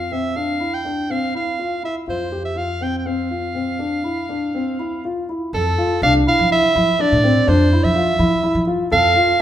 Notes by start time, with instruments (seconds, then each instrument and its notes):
Already playing: upright bass F2, soprano saxophone F5
0.12 grand piano C4, soprano saxophone E5
0.36 grand piano D4, soprano saxophone F5
0.60 grand piano E4
0.74 soprano saxophone G5
0.85 grand piano D4
1.10 grand piano C4, soprano saxophone F5
1.35 grand piano E4, soprano saxophone F5
1.59 grand piano F4
1.83 grand piano E4, soprano saxophone E5
2.07 upright bass F2, grand piano F4, soprano saxophone C5
2.32 grand piano G4
2.45 soprano saxophone E5
2.56 grand piano F4, soprano saxophone F5
2.81 grand piano C4, soprano saxophone G5
2.98 soprano saxophone G5
3.06 grand piano C4, soprano saxophone F5
3.31 grand piano F4
3.55 grand piano C4
3.79 grand piano D4
4.04 grand piano E4
4.29 grand piano D4
4.55 grand piano C4
4.79 grand piano E4
5.05 grand piano F4
5.29 grand piano E4
5.53 upright bass F2, grand piano A4, soprano saxophone A4
5.78 grand piano F4
6.02 upright bass C2, grand piano D4, soprano saxophone F5
6.27 grand piano E4, soprano saxophone F5
6.39 upright bass F3
6.51 grand piano E4, soprano saxophone E5
6.75 upright bass F3, grand piano E4
6.99 grand piano D4, soprano saxophone D5
7.12 upright bass A2
7.24 grand piano C4
7.48 upright bass F2, grand piano D4, soprano saxophone C5
7.73 grand piano E4
7.84 upright bass F3, soprano saxophone E5
7.96 grand piano F4
8.19 upright bass F3, grand piano E4
8.43 grand piano E4
8.55 upright bass F3
8.67 grand piano F4
8.91 upright bass F2, grand piano A4, soprano saxophone F5
9.16 grand piano F4